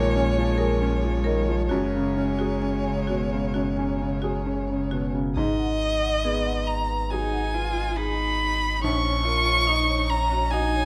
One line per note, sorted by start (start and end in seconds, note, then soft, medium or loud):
0.00 1.72 A#1 loud
0.00 1.73 A#2 medium
0.00 1.26 D#3 medium
0.00 0.38 F3 medium
0.00 1.68 G#3 medium
0.00 0.16 C#4 medium
0.00 0.58 G#4 medium
0.00 1.67 C#5 loud
0.14 0.50 C#4 medium
0.14 0.27 G#5 medium
0.35 0.72 F3 medium
0.35 0.49 G#5 medium
0.58 0.94 G#4 medium
0.58 0.71 A#4 loud
0.82 1.17 C#4 medium
1.02 1.40 F3 medium
1.02 1.15 C#5 medium
1.24 1.48 D#3 medium
1.24 1.38 A#4 loud
1.49 1.71 F3 medium
1.68 5.35 F#1 medium
1.68 3.50 F#2 medium
1.68 5.11 G#3 medium
1.68 1.84 F#4 medium
1.68 5.10 C#5 medium
1.95 2.31 C#3 medium
2.17 2.54 C#4 medium
2.39 2.53 F#4 medium
2.39 2.77 G#4 medium
2.62 2.99 C#4 medium
2.62 2.76 G#5 medium
2.83 3.22 C#3 medium
2.83 2.98 G#5 medium
3.07 3.32 B2 medium
3.07 3.21 F#4 medium
3.33 3.69 C#3 medium
3.54 5.33 F#2 medium
3.54 3.68 F#4 medium
3.77 4.15 C#4 medium
3.77 3.91 G#5 medium
3.99 4.37 C#3 medium
3.99 4.13 G#5 medium
4.22 4.36 F#4 loud
4.22 4.60 G#4 medium
4.46 4.82 C#4 medium
4.68 5.06 C#3 soft
4.68 4.82 C#5 medium
4.91 5.15 B2 medium
4.91 5.05 F#4 medium
5.15 5.37 C#3 medium
5.35 8.84 G#1 medium
5.35 8.79 G#2 medium
5.35 5.49 G#4 medium
5.35 6.68 D#5 loud
5.59 5.72 F#5 medium
5.80 5.93 D#5 medium
6.02 6.15 F#5 medium
6.25 7.64 B3 medium
6.25 6.38 G#4 medium
6.46 6.59 F#5 medium
6.67 7.12 A#5 medium
6.89 7.02 B4 medium
7.10 8.79 F#3 medium
7.10 7.56 D#4 medium
7.10 7.24 G#4 medium
7.10 8.80 G#4 medium
7.10 7.98 G#5 medium
7.32 7.45 F#5 medium
7.54 7.98 F4 medium
7.54 7.67 B4 medium
7.76 7.89 D#5 medium
7.97 8.82 D#4 medium
7.97 8.11 G#4 medium
7.97 8.83 B5 loud
8.82 10.85 A#1 medium
8.82 9.26 C#4 medium
8.82 8.95 D#4 medium
8.82 10.12 C#6 loud
9.03 9.16 C#5 medium
9.25 9.69 F4 medium
9.25 9.38 A#4 medium
9.46 9.59 C#5 medium
9.67 9.80 D#4 medium
9.67 10.12 D#4 medium
9.67 10.85 D#4 medium
9.89 10.01 C#5 medium
10.10 10.53 C#4 medium
10.10 10.53 A#5 loud
10.32 10.45 F#4 medium
10.51 10.85 D#4 medium
10.51 10.66 D#4 medium
10.51 10.85 F#4 medium
10.51 10.85 D#5 medium
10.51 10.85 G#5 loud
10.75 10.85 C#5 medium